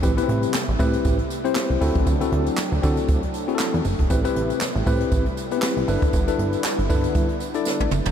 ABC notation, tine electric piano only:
X:1
M:4/4
L:1/16
Q:"Swing 16ths" 1/4=118
K:Ador
V:1 name="Tine electric piano"
[CEGB] [B,CEGB]3 z2 [CEGB]3 z2 [CEGc]3 [CEFA]2 | z [CEFA]3 z2 [CEFA]3 z2 [CEF^GA]3 z2 | [CEGB] [CEGB]3 z2 [CEGB]3 z2 [B,CEGB]3 [DEAB]2 | z [DEAB]3 z2 [DEAB]3 z2 [DEAd]3 z2 |]